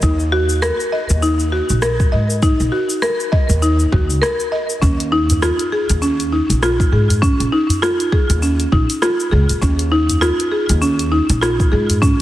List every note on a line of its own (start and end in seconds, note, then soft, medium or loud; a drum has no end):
0.02 0.69 D#2 medium
0.02 0.19 D#4 medium
0.02 kick loud
0.02 cabasa medium
0.19 cabasa soft
0.32 0.42 F#4 loud
0.49 cabasa medium
0.62 0.91 A#4 medium
0.62 cross-stick loud
0.62 cabasa medium
0.80 cabasa soft
0.92 1.09 D#5 medium
1.09 1.59 D#2 medium
1.09 cabasa medium
1.22 1.39 D#4 medium
1.22 cabasa medium
1.39 cabasa soft
1.52 1.81 F#4 medium
1.69 2.05 A#1 medium
1.69 cabasa medium
1.82 2.11 A#4 medium
1.82 cross-stick medium
1.82 cabasa medium
2.00 kick loud
2.00 cabasa soft
2.12 2.49 G#2 medium
2.12 2.29 D#5 medium
2.30 cabasa medium
2.42 2.59 D#4 medium
2.42 kick loud
2.42 cabasa medium
2.60 2.68 A#1 medium
2.60 cabasa soft
2.72 3.01 F#4 medium
2.90 cabasa medium
3.02 3.19 A#4 medium
3.02 cross-stick medium
3.02 cabasa medium
3.20 cabasa soft
3.32 3.61 D#5 medium
3.32 kick loud
3.49 3.84 D#2 medium
3.49 cabasa medium
3.62 3.72 D#4 medium
3.62 cabasa medium
3.79 cabasa soft
3.92 4.10 D#2 medium
3.92 4.09 F#4 medium
3.92 kick loud
4.10 4.18 C#2 medium
4.10 cabasa medium
4.22 4.39 A#4 loud
4.22 cross-stick medium
4.22 cabasa medium
4.40 cabasa soft
4.52 4.81 D#5 medium
4.70 cabasa medium
4.82 5.49 D#2 loud
4.82 4.99 C#4 medium
4.82 kick loud
4.82 cabasa medium
5.00 closed hi-hat soft
5.00 cabasa soft
5.12 5.22 D#4 loud
5.30 closed hi-hat soft
5.30 udu medium
5.30 cabasa medium
5.42 5.71 F4 medium
5.42 cross-stick medium
5.42 cabasa medium
5.59 closed hi-hat soft
5.59 cabasa soft
5.72 5.89 G#4 medium
5.90 6.39 D#2 medium
5.90 closed hi-hat soft
5.90 cabasa medium
6.02 6.19 C#4 medium
6.02 cabasa medium
6.20 closed hi-hat soft
6.20 cabasa soft
6.32 6.61 D#4 medium
6.50 6.85 A#1 medium
6.50 closed hi-hat soft
6.50 cabasa medium
6.63 6.92 F4 loud
6.63 cross-stick medium
6.63 cabasa medium
6.80 kick loud
6.80 cabasa soft
6.92 7.29 G#2 medium
6.92 7.09 G#4 medium
7.09 closed hi-hat soft
7.09 udu medium
7.09 cabasa medium
7.22 7.39 C#4 loud
7.22 kick loud
7.22 cabasa medium
7.40 7.48 A#1 medium
7.40 closed hi-hat soft
7.40 cabasa soft
7.52 7.81 D#4 medium
7.69 closed hi-hat medium
7.69 udu medium
7.69 cabasa medium
7.82 7.99 F4 loud
7.82 cross-stick medium
7.82 cabasa soft
8.00 closed hi-hat soft
8.00 cabasa soft
8.12 8.41 G#4 medium
8.12 kick loud
8.30 8.64 D#2 medium
8.30 closed hi-hat medium
8.30 cabasa medium
8.42 8.52 C#4 medium
8.42 cabasa medium
8.60 closed hi-hat soft
8.60 cabasa soft
8.72 8.83 A#1 medium
8.72 8.89 D#4 medium
8.72 kick loud
8.90 closed hi-hat soft
8.90 cabasa medium
9.02 9.19 F4 medium
9.02 cross-stick medium
9.02 cabasa medium
9.20 cabasa soft
9.31 9.43 C#2 medium
9.31 9.61 G#4 medium
9.31 udu medium
9.49 9.57 D#2 medium
9.49 closed hi-hat medium
9.49 cabasa medium
9.62 10.29 D#2 loud
9.62 9.79 C#4 medium
9.62 kick loud
9.62 cabasa soft
9.79 closed hi-hat soft
9.79 cabasa soft
9.92 10.02 D#4 loud
10.10 closed hi-hat medium
10.10 udu medium
10.10 cabasa medium
10.21 10.51 F4 loud
10.21 cross-stick medium
10.21 cabasa medium
10.40 closed hi-hat soft
10.40 cabasa soft
10.52 10.69 G#4 medium
10.69 11.19 D#2 medium
10.69 closed hi-hat medium
10.69 cabasa medium
10.82 10.99 C#4 medium
10.82 cabasa soft
10.99 closed hi-hat soft
10.99 cabasa soft
11.12 11.41 D#4 medium
11.29 11.64 A#1 medium
11.29 closed hi-hat medium
11.29 cabasa medium
11.41 11.71 F4 medium
11.41 cross-stick medium
11.41 cabasa soft
11.60 kick loud
11.60 cabasa soft
11.72 12.09 G#2 medium
11.72 11.89 G#4 medium
11.90 closed hi-hat medium
11.90 udu medium
11.90 cabasa medium
12.02 12.19 C#4 medium
12.02 kick loud
12.02 cabasa medium